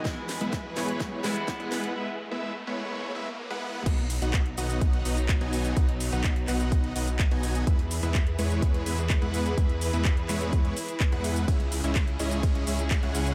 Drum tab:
CC |----------------|----------------|x---------------|----------------|
RD |----------------|----------------|----------------|----------------|
HH |x-oxx-oxx-oxxxox|----------------|xxoxxxoxxxoxxxox|xxoxxxoxxxoxxxox|
SH |----------------|----------------|x-xxx-xxx-xxx-xx|x-xxx-xxx-xxx-xx|
CP |----------------|----------------|----x-------x---|----x-x-----x---|
SD |o-o-o-o-o-o-o-o-|----------------|----------------|----------------|
BD |o---o---o---o---|----------------|o---o---o---o---|o---o---o---o---|

CC |----------------|----------------|----------------|
RD |----------------|----------------|x---x---x---x---|
HH |xxoxxxoxxxoxxxox|xxoxxxoxxxoxxxox|xxoxxxoxxxoxxxox|
SH |x-xxx-xxx-xxx-xx|x-xxx-xxx-xxx-xx|x-xxx-xxx-xxx-xx|
CP |----x-------x---|----x-x-----x---|----x-------x---|
SD |----------------|----------------|----------------|
BD |o---o---o---o---|o---o---o---o---|o---o---o---o---|